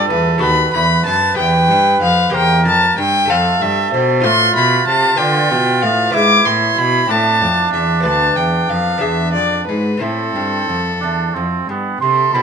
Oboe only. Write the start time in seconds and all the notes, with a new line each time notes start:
Already playing: A4
0.42 B4
1.38 B4
2.35 A#4
3.29 A4
4.25 F4
5.19 F4
6.15 E4
7.09 D4
10.02 C4
11.01 D4
11.35 C4
11.70 B3
12.01 C6
12.34 B5